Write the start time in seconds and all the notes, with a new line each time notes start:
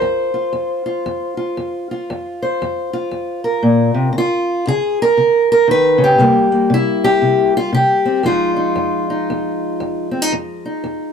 Already playing: F4 C5
0.02 F2
0.34 F4
0.53 F2
0.86 F4
1.06 F2
1.37 F4
1.57 F2
1.91 F4
2.10 F2
2.42 C5
2.62 F2
2.93 F4
3.11 F2
3.44 A#4
3.63 A#2
3.94 C3
4.13 C#3
4.18 F4
4.67 C#3 G#4
5.02 A#4
5.17 C#3
5.52 A#4
5.68 D#3 B4
5.98 C#3
6.04 G4
6.18 C3 G3 A#3
6.52 A#3
6.70 C3
6.74 E4
7.04 G4
7.22 C3
7.57 F4
7.73 C3 G4
8.05 C4
8.23 F2 F3 G#3 D#4 F4
8.56 D#4
8.76 F2
9.10 D#4
9.30 F2
9.80 F2
10.11 C4
10.22 D#4
10.32 F2
10.65 D#4
10.84 F2